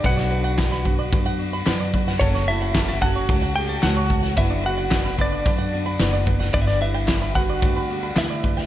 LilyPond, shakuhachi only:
\new Staff \with { instrumentName = "Shakuhachi" } { \time 4/4 \key b \minor \tempo 4 = 111 fis'2. r4 | cis'8 e'4 fis'4 g'8 fis'4 | e'8 fis'4 d'2 r8 | d'32 e'32 d'16 e'4 fis'4. e'4 | }